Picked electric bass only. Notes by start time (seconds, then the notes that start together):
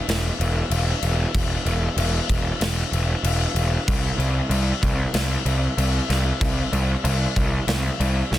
0.08 E1
0.39 E1
0.70 E1
1.02 E1
1.35 E1
1.65 E1
1.96 E1
2.29 E1
2.61 E1
2.92 E1
3.23 E1
3.55 E1
3.88 C2
4.18 C2
4.49 C2
4.82 C2
5.14 C2
5.45 C2
5.77 C2
6.09 C2
6.41 C2
6.72 C2
7.04 C2
7.36 C2
7.67 C2
8.00 C2
8.32 C2